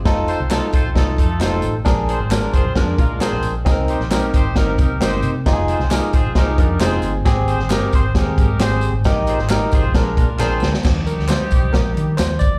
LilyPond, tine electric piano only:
<<
  \new Staff \with { instrumentName = "Tine electric piano" } { \time 4/4 \key ees \major \tempo 4 = 133 <ees' f' a'>8. r16 <ees' f' a'>8. r16 <ees' f' a'>8. r16 <ees' f' g' a'>8. r16 | <d' aes' bes'>8. r16 <d' aes' bes'>8. r16 <des' d' aes' bes'>8. r16 <d' aes' bes'>8. r16 | <c' ees' aes' bes'>8. r16 <c' ees' bes'>8. r16 <c' ees' bes'>8. r16 <c' ees' bes'>8. r16 | <ees' f' g' aes'>8. r16 <ees' f' aes'>8. r16 <ees' f' aes'>8. r16 <ees' f' g' aes'>8. r16 |
<c' g' aes'>8. r16 <c' g' bes'>8. r16 <c' g' aes'>8. r16 <c' g' aes'>8. r16 | <ees' g' bes'>8. r16 <ees' g' bes'>8. r16 <d' aes' bes'>8. r16 <d' aes' bes'>8. r16 | r8 bes'8 c''4 bes'4 c''8 d''8 | }
  \new Staff \with { instrumentName = "Tine electric piano" } { \clef bass \time 4/4 \key ees \major r1 | r1 | r1 | r1 |
r1 | r1 | <f g d'>1 | }
>>